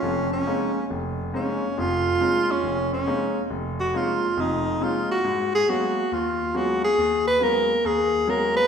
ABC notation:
X:1
M:4/4
L:1/8
Q:"Swing" 1/4=138
K:Bbm
V:1 name="Tenor saxophone"
D D3 z2 D2 | F3 D2 D3 | z G F2 E2 F G- | G A G2 F2 G A- |
A _c B2 A2 B c |]
V:2 name="Grand piano"
[F,,,F,,]2 [A,B,CDE] z F,,,2 [A,B,CDE] z | [F,,,F,,]2 [A,B,CDE] z F,,,2 [A,B,CDE] z | F,,,2 [A,B,CDE] z [F,,,F,,]2 [A,B,CDE] z | A,,2 [G,A,B,_CD] z E,,2 [G,A,B,CD] z |
E,,2 [G,A,B,_CD] z E,,2 [G,A,B,CD] z |]